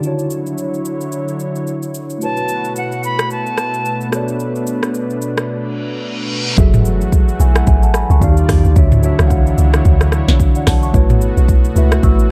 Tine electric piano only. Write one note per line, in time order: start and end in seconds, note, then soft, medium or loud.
0.00 2.16 D3 medium
0.00 2.17 D4 medium
0.00 2.18 E4 medium
0.05 2.19 F#4 medium
0.05 2.19 C#5 medium
2.18 4.07 A3 medium
2.18 4.08 E4 medium
2.18 4.09 F#4 medium
2.23 4.10 B4 medium
2.23 4.10 C#5 medium
4.10 6.25 B3 medium
4.10 6.26 F#4 medium
4.10 6.27 A4 medium
4.15 6.28 C#5 medium
4.15 6.29 D5 medium
6.57 7.24 F#3 medium
6.57 7.25 F#4 medium
6.57 7.25 G#4 medium
6.57 7.26 A4 medium
6.57 7.26 E5 medium
7.40 7.55 E5 medium
7.40 7.55 G#5 medium
7.56 7.67 F#5 medium
7.68 7.83 E5 medium
7.68 7.82 G#5 medium
7.83 7.94 F#5 medium
7.83 7.94 A5 medium
7.95 8.10 G#5 medium
7.95 8.10 B5 medium
8.11 8.37 A5 medium
8.11 8.36 C#6 medium
8.20 8.66 D#3 medium
8.20 8.67 D#4 medium
8.20 8.29 F#4 medium
8.20 8.68 D5 medium
8.20 8.68 F5 loud
8.29 8.70 G4 medium
8.75 8.98 D3 medium
8.75 8.99 D4 medium
8.75 8.99 F#4 medium
8.75 8.99 C#5 medium
8.75 9.00 E5 loud
9.02 9.15 D3 medium
9.02 9.16 D4 medium
9.02 9.16 F#4 medium
9.02 9.17 C#5 medium
9.02 9.17 E5 loud
9.18 10.05 E3 medium
9.18 10.05 D4 medium
9.18 10.06 F#4 medium
9.18 10.06 C#5 medium
9.18 9.26 F5 medium
9.28 10.10 F#5 loud
10.56 10.67 D5 medium
10.56 10.67 F#5 medium
10.67 10.82 F#5 medium
10.67 10.82 A5 medium
10.83 11.09 A5 medium
10.83 11.09 C#6 medium
10.93 11.61 A3 medium
10.93 11.61 E4 medium
10.93 11.62 F#4 medium
10.93 11.62 B4 medium
10.93 11.62 C#5 loud
11.75 12.30 A3 medium
11.75 12.30 E4 medium
11.75 12.31 F#4 medium
11.75 12.31 B4 medium
11.75 12.31 E5 loud
12.04 12.30 C#6 medium
12.04 12.29 E6 medium